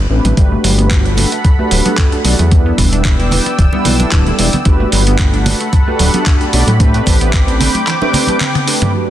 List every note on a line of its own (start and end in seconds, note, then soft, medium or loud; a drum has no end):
0.10 0.21 A1 loud
0.10 0.34 A3 medium
0.10 0.34 C4 medium
0.10 0.34 D4 medium
0.10 0.34 G4 medium
0.10 0.35 B4 medium
0.24 0.34 A1 medium
0.24 closed hi-hat soft
0.24 high conga medium
0.24 low conga medium
0.37 0.57 G1 medium
0.37 0.43 F#3 medium
0.37 0.75 A3 medium
0.37 0.75 D4 medium
0.37 0.75 F#4 medium
0.37 0.75 G4 medium
0.37 2.49 A4 medium
0.37 0.75 B4 loud
0.37 2.49 F#5 medium
0.37 2.50 B5 medium
0.37 kick loud
0.37 closed hi-hat medium
0.52 0.57 A3 loud
0.64 1.26 G1 loud
0.64 0.70 F#3 loud
0.64 open hi-hat loud
0.78 1.15 A3 medium
0.78 0.86 B3 loud
0.78 1.15 D4 medium
0.78 1.15 F#4 medium
0.78 1.15 G4 medium
0.78 1.15 B4 medium
0.78 closed hi-hat soft
0.91 kick loud
0.91 clap loud
0.91 closed hi-hat medium
1.05 1.10 D4 loud
1.05 closed hi-hat soft
1.17 1.23 F#3 medium
1.17 1.27 A3 medium
1.17 1.28 D4 medium
1.17 1.28 F#4 medium
1.17 1.28 G4 medium
1.17 1.28 B4 loud
1.17 open hi-hat medium
1.17 low conga medium
1.32 1.44 A3 medium
1.32 closed hi-hat soft
1.45 1.50 F#3 medium
1.45 kick loud
1.45 closed hi-hat medium
1.59 1.82 A3 medium
1.59 1.64 A3 medium
1.59 1.82 D4 medium
1.59 1.82 F#4 medium
1.59 1.83 G4 medium
1.59 1.83 B4 medium
1.71 1.82 D1 medium
1.71 1.77 F#3 loud
1.71 open hi-hat loud
1.85 2.22 A3 medium
1.85 1.94 B3 loud
1.85 2.22 D4 medium
1.85 2.22 F#4 medium
1.85 2.22 G4 medium
1.85 2.22 A4 loud
1.85 closed hi-hat soft
1.85 high conga medium
1.98 2.04 B3 medium
1.98 kick loud
1.98 clap loud
1.98 closed hi-hat medium
2.12 2.17 D4 medium
2.12 closed hi-hat soft
2.25 2.35 B1 medium
2.25 2.30 F#3 medium
2.25 2.35 A3 medium
2.25 2.35 D4 medium
2.25 2.35 F#4 medium
2.25 2.35 G4 medium
2.25 2.35 D5 medium
2.25 open hi-hat loud
2.39 2.73 E2 medium
2.39 2.51 A3 medium
2.39 closed hi-hat soft
2.39 high conga medium
2.51 2.57 E3 medium
2.51 2.89 G3 medium
2.51 2.89 B3 medium
2.51 2.89 D4 medium
2.51 2.90 E4 medium
2.51 2.90 B4 loud
2.51 4.64 D5 medium
2.51 4.64 G5 medium
2.51 4.64 E6 medium
2.51 kick loud
2.51 closed hi-hat medium
2.66 2.71 B3 loud
2.78 3.40 E1 loud
2.78 2.84 E3 loud
2.78 kick medium
2.78 open hi-hat medium
2.92 3.29 G3 medium
2.92 3.29 B3 medium
2.92 3.01 D4 medium
2.92 3.29 D4 medium
2.92 3.29 E4 medium
2.92 3.29 B4 medium
2.92 closed hi-hat medium
3.05 3.11 D4 medium
3.05 kick loud
3.05 clap loud
3.05 closed hi-hat medium
3.19 3.24 E4 loud
3.19 closed hi-hat soft
3.31 3.37 E3 medium
3.31 3.42 G3 medium
3.31 3.42 B3 medium
3.31 3.42 D4 medium
3.31 3.42 E4 medium
3.31 3.42 B4 loud
3.31 open hi-hat loud
3.31 low conga medium
3.46 3.58 B3 medium
3.46 closed hi-hat soft
3.46 muted conga soft
3.58 3.69 E1 loud
3.58 3.64 E3 medium
3.58 kick loud
3.58 closed hi-hat medium
3.73 3.96 G3 medium
3.73 3.96 B3 medium
3.73 3.78 B3 medium
3.73 3.97 D4 medium
3.73 3.97 E4 medium
3.73 3.97 B4 loud
3.73 muted conga medium
3.85 4.06 B1 medium
3.85 3.91 E3 medium
3.85 open hi-hat loud
3.85 low conga medium
4.00 4.36 G3 medium
4.00 4.36 B3 medium
4.00 4.08 D4 loud
4.00 4.36 D4 medium
4.00 4.36 E4 medium
4.00 4.36 A4 loud
4.00 closed hi-hat soft
4.00 muted conga medium
4.00 high conga medium
4.12 4.32 D1 medium
4.12 4.18 D4 medium
4.12 kick loud
4.12 clap loud
4.12 closed hi-hat medium
4.27 4.32 E4 loud
4.27 closed hi-hat soft
4.39 4.49 E1 loud
4.39 4.45 E3 medium
4.39 4.49 G3 medium
4.39 4.49 B3 medium
4.39 4.49 D4 medium
4.39 4.49 E4 medium
4.39 4.49 D5 medium
4.39 open hi-hat loud
4.53 4.65 B3 medium
4.53 closed hi-hat medium
4.53 high conga medium
4.53 low conga medium
4.65 4.86 G1 loud
4.65 4.72 F#3 medium
4.65 5.03 A3 medium
4.65 5.04 D4 medium
4.65 5.04 F#4 medium
4.65 5.04 G4 medium
4.65 6.78 A4 medium
4.65 5.04 B4 loud
4.65 6.78 F#5 medium
4.65 8.90 B5 medium
4.65 kick loud
4.65 closed hi-hat medium
4.80 4.85 A3 loud
4.92 5.54 G1 loud
4.92 4.98 F#3 loud
4.92 open hi-hat loud
5.07 5.43 A3 medium
5.07 5.15 B3 medium
5.07 5.43 D4 medium
5.07 5.44 F#4 medium
5.07 5.44 G4 medium
5.07 5.44 B4 medium
5.07 closed hi-hat medium
5.19 5.25 B3 medium
5.19 kick loud
5.19 clap loud
5.19 closed hi-hat medium
5.34 5.39 D4 loud
5.34 closed hi-hat soft
5.46 5.52 F#3 medium
5.46 5.56 A3 medium
5.46 5.56 D4 medium
5.46 5.56 F#4 medium
5.46 5.57 G4 medium
5.46 5.57 B4 loud
5.46 open hi-hat loud
5.46 low conga medium
5.61 5.72 A3 medium
5.61 closed hi-hat medium
5.73 5.79 F#3 medium
5.73 kick loud
5.73 closed hi-hat medium
5.87 6.11 A3 medium
5.87 5.92 A3 loud
5.87 6.11 D4 medium
5.87 6.11 F#4 medium
5.87 6.11 G4 medium
5.87 6.11 B4 loud
5.99 6.10 D1 medium
5.99 6.06 F#3 loud
5.99 open hi-hat loud
6.14 6.50 A3 medium
6.14 6.22 B3 loud
6.14 6.50 D4 medium
6.14 6.50 F#4 medium
6.14 6.50 G4 medium
6.14 6.51 A4 loud
6.14 closed hi-hat medium
6.14 high conga medium
6.26 6.32 B3 medium
6.26 kick loud
6.26 clap loud
6.26 closed hi-hat medium
6.41 6.46 D4 loud
6.41 closed hi-hat soft
6.52 6.64 B1 medium
6.52 6.59 F#3 medium
6.52 6.63 A3 medium
6.52 6.63 D4 medium
6.52 6.63 F#4 medium
6.52 6.63 G4 medium
6.52 6.64 D5 medium
6.52 open hi-hat medium
6.67 7.01 A2 medium
6.67 6.80 A3 medium
6.67 closed hi-hat medium
6.67 high conga medium
6.79 6.86 E3 medium
6.79 7.18 A3 medium
6.79 8.92 C4 medium
6.79 7.18 C4 medium
6.79 7.18 D4 medium
6.79 7.18 G4 medium
6.79 7.18 B4 loud
6.79 8.92 G5 medium
6.79 8.92 D6 medium
6.79 kick loud
6.79 closed hi-hat medium
6.94 7.00 A3 loud
6.94 closed hi-hat soft
7.06 7.69 A1 loud
7.06 7.13 E3 loud
7.06 kick medium
7.06 open hi-hat loud
7.06 muted conga soft
7.21 7.57 A3 medium
7.21 7.29 B3 loud
7.21 7.58 C4 medium
7.21 7.57 D4 medium
7.21 7.58 G4 medium
7.21 7.58 B4 medium
7.21 closed hi-hat medium
7.33 kick loud
7.33 clap loud
7.33 closed hi-hat medium
7.48 7.53 C4 loud
7.48 closed hi-hat soft
7.60 7.66 E3 medium
7.60 7.70 A3 medium
7.60 7.70 C4 medium
7.60 7.70 D4 medium
7.60 7.71 G4 medium
7.60 7.71 B4 loud
7.60 open hi-hat loud
7.60 low conga loud
7.74 7.87 A3 medium
7.74 closed hi-hat medium
7.74 muted conga medium
7.74 high conga medium
7.87 7.93 E3 medium
7.87 clap medium
7.87 closed hi-hat medium
8.01 8.25 A3 medium
8.01 8.07 A3 loud
8.01 8.25 C4 medium
8.01 8.25 D4 medium
8.01 8.25 G4 medium
8.01 8.25 B4 loud
8.01 muted conga medium
8.13 8.20 D4 medium
8.13 open hi-hat medium
8.13 low conga medium
8.27 8.37 A3 medium
8.27 8.37 C4 medium
8.27 8.37 D4 medium
8.27 8.33 D4 medium
8.27 8.37 G4 medium
8.27 8.37 B4 medium
8.27 closed hi-hat medium
8.27 muted conga medium
8.27 high conga medium
8.40 8.50 C4 loud
8.40 clap loud
8.40 closed hi-hat medium
8.40 high tom medium
8.55 8.60 B3 loud
8.55 closed hi-hat soft
8.55 high tom medium
8.67 8.91 A3 medium
8.67 8.91 C4 medium
8.67 8.77 C4 medium
8.67 8.92 D4 medium
8.67 8.92 G4 medium
8.67 8.92 B4 medium
8.67 open hi-hat loud
8.82 8.90 D4 loud
8.82 closed hi-hat medium
8.82 mid tom medium
8.82 high conga medium
8.82 low conga medium
8.94 9.00 F#3 medium
8.94 9.10 G3 medium
8.94 9.10 A3 medium
8.94 9.10 D4 medium
8.94 9.10 F#4 medium
8.94 9.10 G4 medium
8.94 9.10 B4 medium
8.94 9.10 F#5 medium
8.94 9.10 A5 medium
8.94 9.10 B5 medium